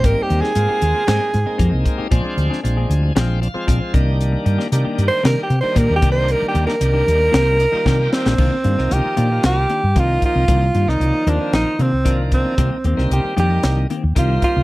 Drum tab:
CC |----------------|----------------|----------------|----------------|
HH |x-x-x-x-x-x-x-x-|x-x-x-x-x-x-x-x-|x-x-x-x-x-x-x-x-|x-x-x-x-x-x-----|
SD |---o----o-------|---o----o-------|---o----o-------|---o----o---o-oo|
BD |o-----------o-o-|o-----------o-o-|------------o-o-|------------o---|

CC |x---------------|----------------|----------------|
HH |--x-x-x-x-x-x-x-|x-x-x-x-x-x-x-x-|x-x-x-x-x-x-x-x-|
SD |---o----o-------|---o----o-------|---o----o-------|
BD |o-----------o-o-|o-----------o-o-|o-----------o-o-|